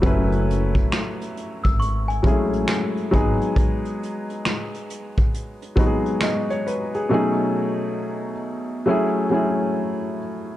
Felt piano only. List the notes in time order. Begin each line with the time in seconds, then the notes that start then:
Already playing: F#3 A3 C#4 E4 F#4
0.02 F#3 A3 C#4 E4
0.06 B4
2.23 F#3 G#3 C#4 E4
2.27 A3 G#4
3.11 F#3 G#3 B3 D#4
3.16 G#4
5.76 F#3 G#3 B3 D#4
5.80 F#4
5.87 G#4
6.23 D#5
6.50 C#5
6.67 B4
6.95 G#4
7.09 B2 F#3 A3 C#4 D#4
7.14 G#4
8.86 F#3 A3 C#4 E4
8.90 G#4
9.30 F#3 A3 C#4 E4
9.34 G#4